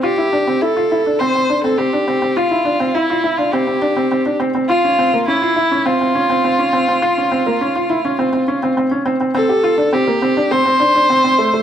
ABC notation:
X:1
M:4/4
L:1/16
Q:1/4=103
K:F
V:1 name="Viola"
G4 A4 c3 A G4 | F4 E3 F G6 z2 | F4 E4 F8- | F12 z4 |
A4 G4 c8 |]
V:2 name="Felt piano"
F E D C E F E D C C D C C D C C | F E D C E F E D C C D C C D C C | F _D C B, D F E D C C D C C D C C | F _D C B, D F E D C C D C C D C C |
C G F D C B, C D C C D D C C A, A, |]